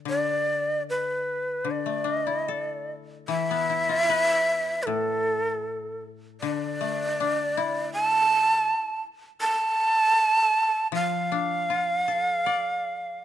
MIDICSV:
0, 0, Header, 1, 3, 480
1, 0, Start_track
1, 0, Tempo, 802139
1, 39, Time_signature, 4, 2, 24, 8
1, 2919, Tempo, 769231
1, 4359, Tempo, 749064
1, 6759, Tempo, 764331
1, 8213, End_track
2, 0, Start_track
2, 0, Title_t, "Shakuhachi"
2, 0, Program_c, 0, 77
2, 56, Note_on_c, 0, 74, 85
2, 496, Note_off_c, 0, 74, 0
2, 537, Note_on_c, 0, 71, 70
2, 1022, Note_on_c, 0, 74, 69
2, 1031, Note_off_c, 0, 71, 0
2, 1279, Note_off_c, 0, 74, 0
2, 1279, Note_on_c, 0, 75, 69
2, 1351, Note_off_c, 0, 75, 0
2, 1351, Note_on_c, 0, 74, 69
2, 1423, Note_off_c, 0, 74, 0
2, 1423, Note_on_c, 0, 75, 69
2, 1495, Note_off_c, 0, 75, 0
2, 1495, Note_on_c, 0, 74, 69
2, 1747, Note_off_c, 0, 74, 0
2, 1965, Note_on_c, 0, 76, 100
2, 2889, Note_on_c, 0, 71, 54
2, 2898, Note_off_c, 0, 76, 0
2, 2905, Note_on_c, 0, 69, 75
2, 2913, Note_off_c, 0, 71, 0
2, 3631, Note_off_c, 0, 69, 0
2, 3876, Note_on_c, 0, 74, 83
2, 4818, Note_off_c, 0, 74, 0
2, 4837, Note_on_c, 0, 81, 104
2, 5532, Note_off_c, 0, 81, 0
2, 5783, Note_on_c, 0, 81, 118
2, 6725, Note_off_c, 0, 81, 0
2, 6770, Note_on_c, 0, 77, 96
2, 8213, Note_off_c, 0, 77, 0
2, 8213, End_track
3, 0, Start_track
3, 0, Title_t, "Koto"
3, 0, Program_c, 1, 107
3, 32, Note_on_c, 1, 50, 47
3, 977, Note_off_c, 1, 50, 0
3, 984, Note_on_c, 1, 50, 46
3, 1112, Note_on_c, 1, 57, 31
3, 1222, Note_on_c, 1, 62, 34
3, 1356, Note_on_c, 1, 64, 34
3, 1486, Note_on_c, 1, 69, 35
3, 1963, Note_on_c, 1, 52, 48
3, 2094, Note_off_c, 1, 57, 0
3, 2099, Note_on_c, 1, 59, 38
3, 2205, Note_off_c, 1, 64, 0
3, 2207, Note_off_c, 1, 62, 0
3, 2212, Note_on_c, 1, 64, 35
3, 2328, Note_on_c, 1, 65, 40
3, 2447, Note_off_c, 1, 50, 0
3, 2450, Note_on_c, 1, 71, 40
3, 2452, Note_off_c, 1, 69, 0
3, 2914, Note_on_c, 1, 45, 51
3, 3043, Note_off_c, 1, 59, 0
3, 3161, Note_off_c, 1, 64, 0
3, 3279, Note_off_c, 1, 65, 0
3, 3394, Note_off_c, 1, 52, 0
3, 3400, Note_off_c, 1, 71, 0
3, 3877, Note_off_c, 1, 45, 0
3, 3884, Note_on_c, 1, 50, 53
3, 4123, Note_on_c, 1, 57, 37
3, 4370, Note_on_c, 1, 62, 49
3, 4607, Note_on_c, 1, 64, 47
3, 5087, Note_off_c, 1, 57, 0
3, 5327, Note_off_c, 1, 50, 0
3, 5330, Note_off_c, 1, 62, 0
3, 5564, Note_off_c, 1, 64, 0
3, 6752, Note_on_c, 1, 53, 60
3, 7002, Note_on_c, 1, 62, 44
3, 7242, Note_on_c, 1, 65, 41
3, 7480, Note_on_c, 1, 69, 38
3, 7721, Note_on_c, 1, 74, 44
3, 7958, Note_off_c, 1, 62, 0
3, 8195, Note_off_c, 1, 53, 0
3, 8202, Note_off_c, 1, 65, 0
3, 8213, Note_off_c, 1, 69, 0
3, 8213, Note_off_c, 1, 74, 0
3, 8213, End_track
0, 0, End_of_file